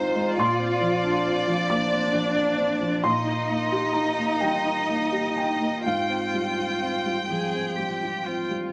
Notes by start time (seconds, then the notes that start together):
Already playing: G#2 D#3 G#3 C4 D#4 F4 C5 G#5 A#5
0.15 G#3
0.37 A#2 A#3 D4 C5 D5 C6
0.59 C4
0.81 F3
1.04 D4
1.26 C4
1.47 F3
1.69 A#3 D4 D6
1.91 C4
2.13 F3
2.36 D4
2.57 C4
2.81 F3
3.03 A#2 D#4 A#4 D#5 C6
3.25 D#4
3.49 A#3
3.72 G4
3.93 D#4 A#5
4.18 A#3
4.41 G3 G5
4.65 D#4
4.88 A#3
5.12 G4
5.36 D#4 G5
5.60 A#3
5.84 G#2 C4 F4 F5 G5
6.09 C4
6.34 G3
6.57 F4
6.82 C4
7.06 G3
7.28 F3 G#4
7.54 C4
7.76 G3 G4
8.02 F4
8.26 C4 F4
8.50 G3